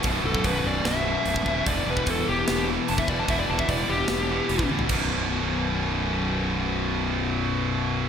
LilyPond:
<<
  \new Staff \with { instrumentName = "Lead electric guitar" } { \time 4/4 \key e \minor \tempo 4 = 148 r8 a'8 b'8 d''8 e''2 | d''8 b'8 a'8 g'4 r8 a''16 e''16 d''16 a''16 | e''16 d''16 a''16 e''16 d''8 g'2 r8 | r1 |
r1 | }
  \new Staff \with { instrumentName = "Distorted electric guitar" } { \clef bass \time 4/4 \key e \minor <b,, fis, b,>2.~ <b,, fis, b,>8 <b,, fis, b,>8 | <e, b, e>2.~ <e, b, e>8 <e, b, e>8 | <e, b, e>2.~ <e, b, e>8 <e, b, e>8 | <b,, fis, b,>1~ |
<b,, fis, b,>1 | }
  \new Staff \with { instrumentName = "Distorted electric guitar" } { \clef bass \time 4/4 \key e \minor <b,, fis, b,>2~ <b,, fis, b,>8 <b,, fis, b,>8 <b,, fis, b,>4 | <e, b, e>2~ <e, b, e>8 <e, b, e>8 <e, b, e>4 | <e, b, e>2~ <e, b, e>8 <e, b, e>8 <e, b, e>4 | <b,, fis, b,>1~ |
<b,, fis, b,>1 | }
  \new Staff \with { instrumentName = "Fingered electric bass" } { \clef bass \time 4/4 \key e \minor b,,,8 b,,,8 b,,,8 b,,,8 b,,,4 b,,,8 dis,,8 | e,,8 e,,8 e,,8 e,,8 e,,4 e,,8 e,,8 | e,,8 e,,8 e,,8 e,,8 e,,4 e,,8 a,,8 | b,,,1~ |
b,,,1 | }
  \new DrumStaff \with { instrumentName = "Drums" } \drummode { \time 4/4 <hho bd>8. bd16 <hho bd>4 <hho sn>4 hho16 bd16 bd8 | <hho bd>8. bd16 <hho bd>4 <hho sn>4 hho16 bd16 bd8 | <hho bd>8. bd16 <hho bd>4 <hho sn>4 hho16 bd16 tommh16 tomfh16 | <cymc bd>4 r4 r4 r4 |
r4 r4 r4 r4 | }
>>